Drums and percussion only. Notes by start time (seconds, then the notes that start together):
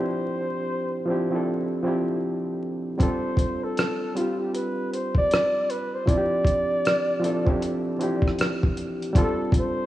3.00 kick, closed hi-hat
3.37 kick, closed hi-hat
3.77 cross-stick, closed hi-hat
4.17 closed hi-hat
4.55 closed hi-hat
4.93 closed hi-hat
5.15 kick
5.31 cross-stick, closed hi-hat
5.70 closed hi-hat
6.08 kick, closed hi-hat
6.45 kick, closed hi-hat
6.85 cross-stick, closed hi-hat
7.24 closed hi-hat
7.47 kick
7.62 closed hi-hat
8.01 closed hi-hat
8.22 kick
8.28 cross-stick
8.39 cross-stick, closed hi-hat
8.63 kick
8.77 closed hi-hat
9.02 closed hi-hat
9.15 kick, closed hi-hat
9.52 kick, closed hi-hat